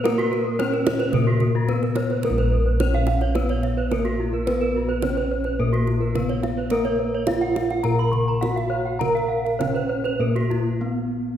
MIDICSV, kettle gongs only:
0, 0, Header, 1, 2, 480
1, 0, Start_track
1, 0, Tempo, 550459
1, 37, Time_signature, 4, 2, 24, 8
1, 1958, Tempo, 559701
1, 6758, Tempo, 585938
1, 8198, Tempo, 610998
1, 9588, End_track
2, 0, Start_track
2, 0, Title_t, "Kettle gongs"
2, 0, Program_c, 0, 14
2, 0, Note_on_c, 0, 46, 62
2, 33, Note_on_c, 0, 70, 66
2, 480, Note_off_c, 0, 46, 0
2, 516, Note_on_c, 0, 59, 51
2, 585, Note_off_c, 0, 59, 0
2, 993, Note_on_c, 0, 46, 65
2, 1436, Note_off_c, 0, 70, 0
2, 1474, Note_on_c, 0, 59, 41
2, 1544, Note_off_c, 0, 59, 0
2, 1958, Note_on_c, 0, 70, 51
2, 2003, Note_on_c, 0, 34, 73
2, 2403, Note_off_c, 0, 46, 0
2, 2436, Note_on_c, 0, 59, 45
2, 2505, Note_off_c, 0, 59, 0
2, 3360, Note_off_c, 0, 70, 0
2, 3397, Note_on_c, 0, 59, 38
2, 3466, Note_off_c, 0, 59, 0
2, 3865, Note_on_c, 0, 71, 59
2, 4348, Note_on_c, 0, 59, 47
2, 4417, Note_off_c, 0, 59, 0
2, 4818, Note_off_c, 0, 34, 0
2, 4831, Note_on_c, 0, 46, 53
2, 5270, Note_off_c, 0, 71, 0
2, 5308, Note_on_c, 0, 59, 35
2, 5377, Note_off_c, 0, 59, 0
2, 5789, Note_on_c, 0, 70, 63
2, 6235, Note_off_c, 0, 46, 0
2, 6265, Note_on_c, 0, 59, 43
2, 6334, Note_off_c, 0, 59, 0
2, 6760, Note_on_c, 0, 46, 54
2, 7198, Note_off_c, 0, 70, 0
2, 7234, Note_on_c, 0, 59, 44
2, 7300, Note_off_c, 0, 59, 0
2, 7712, Note_on_c, 0, 70, 52
2, 8165, Note_off_c, 0, 46, 0
2, 8198, Note_on_c, 0, 59, 45
2, 8261, Note_off_c, 0, 59, 0
2, 8667, Note_on_c, 0, 46, 44
2, 9120, Note_off_c, 0, 70, 0
2, 9147, Note_on_c, 0, 59, 36
2, 9210, Note_off_c, 0, 59, 0
2, 9588, Note_off_c, 0, 46, 0
2, 9588, End_track
0, 0, End_of_file